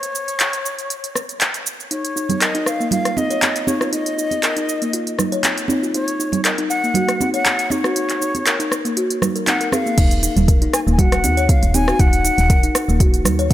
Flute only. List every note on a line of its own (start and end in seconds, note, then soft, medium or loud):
0.00 1.37 C#5 loud
1.91 2.43 C#5 medium
2.41 2.68 D#5 medium
2.67 2.91 F5 loud
2.92 3.19 F5 loud
3.17 3.69 D#5 loud
3.68 3.92 C#5 medium
3.93 5.40 D#5 loud
5.94 6.41 C#5 loud
6.45 6.51 D#5 medium
6.70 7.30 F#5 loud
7.34 7.73 F#5 loud
7.71 9.22 C#5 medium
9.47 9.71 F#5 loud
9.72 10.44 F5 loud
10.74 10.80 G#5 loud
10.92 11.00 G#5 medium
10.99 11.50 F#5 loud
11.49 11.76 F5 loud
11.74 12.01 G#5 loud
12.00 13.01 F#5 loud